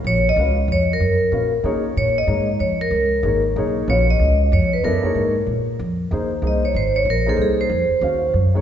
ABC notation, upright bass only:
X:1
M:3/4
L:1/8
Q:"Swing" 1/4=188
K:Bbphr
V:1 name="Upright bass" clef=bass
B,,,2 D,,2 F,,2 | G,,2 B,,2 D,2 | B,,2 A,,2 F,,2 | D,,2 A,,,2 C,,2 |
B,,,2 D,,2 F,,2 | G,, z A,,2 B,,2 | [K:Fphr] F,,2 E,,2 C,,2 | A,,,2 B,,,2 C,,2 |
F,, z E,,2 G,,2 |]